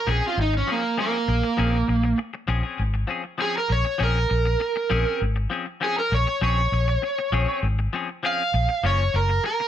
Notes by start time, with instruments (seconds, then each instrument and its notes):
0.07 fingered electric bass A#1, clean electric guitar F3 C4 C#4 G#4, electric slide guitar G#4
0.22 clean electric guitar C4 C#4 G#4
0.27 electric slide guitar F4
0.37 fingered electric bass G#1
0.41 electric slide guitar D#4
0.53 muted clean electric guitar stroke
0.57 electric slide guitar C#4
0.67 clean electric guitar F3 C4 C#4 G#4
0.72 electric slide guitar A#3
0.83 muted clean electric guitar stroke
0.98 clean electric guitar F3 C4 C#4 G#4, electric slide guitar A#3
1.28 fingered electric bass A#1, muted clean electric guitar stroke
1.43 muted clean electric guitar stroke
1.57 fingered electric bass A#1, clean electric guitar F3 C4 C#4 G#4
1.88 fingered electric bass A#1, muted clean electric guitar stroke
2.04 muted clean electric guitar stroke
2.18 muted clean electric guitar stroke
2.34 muted clean electric guitar stroke
2.48 fingered electric bass A#1, clean electric guitar F3 C4 C#4 G#4
2.63 clean electric guitar C4 C#4 G#4
2.79 fingered electric bass G#1
2.94 muted clean electric guitar stroke
3.07 clean electric guitar F3 C4 C#4 G#4
3.24 muted clean electric guitar stroke
3.38 clean electric guitar F3 C4 C#4 G#4, electric slide guitar G#4
3.58 electric slide guitar A#4
3.69 fingered electric bass A#1, electric slide guitar C#5, muted clean electric guitar stroke
3.85 muted clean electric guitar stroke
3.98 fingered electric bass A#1, clean electric guitar F3 C4 C#4 G#4
4.04 electric slide guitar A#4
4.29 fingered electric bass A#1, muted clean electric guitar stroke
4.45 muted clean electric guitar stroke
4.60 muted clean electric guitar stroke
4.76 muted clean electric guitar stroke
4.90 fingered electric bass A#1, clean electric guitar F3 C4 C#4 G#4
5.07 clean electric guitar C4 C#4
5.22 fingered electric bass G#1
5.36 muted clean electric guitar stroke
5.50 clean electric guitar F3 C4 C#4 G#4
5.66 muted clean electric guitar stroke
5.81 clean electric guitar F3 C4 C#4 G#4, electric slide guitar G#4
5.99 electric slide guitar A#4
6.11 fingered electric bass A#1, electric slide guitar C#5, muted clean electric guitar stroke
6.27 muted clean electric guitar stroke
6.41 fingered electric bass A#1, clean electric guitar F3 C4 C#4 G#4, electric slide guitar C#5
6.72 fingered electric bass A#1, muted clean electric guitar stroke
6.88 muted clean electric guitar stroke
7.02 muted clean electric guitar stroke
7.19 muted clean electric guitar stroke
7.32 fingered electric bass A#1, clean electric guitar F3 C4 C#4 G#4
7.48 clean electric guitar C4 C#4 G#4
7.63 fingered electric bass G#1
7.79 muted clean electric guitar stroke
7.93 clean electric guitar F3 C4 C#4 G#4
8.09 muted clean electric guitar stroke
8.23 clean electric guitar F3 C4 C#4 G#4, electric slide guitar F5
8.54 fingered electric bass A#1, muted clean electric guitar stroke
8.69 muted clean electric guitar stroke
8.83 fingered electric bass F#1, clean electric guitar F3 A#3 C#4 F4, electric slide guitar C#5
9.14 fingered electric bass F#1, electric slide guitar A#4, muted clean electric guitar stroke
9.29 muted clean electric guitar stroke
9.44 electric slide guitar A#4, muted clean electric guitar stroke
9.60 muted clean electric guitar stroke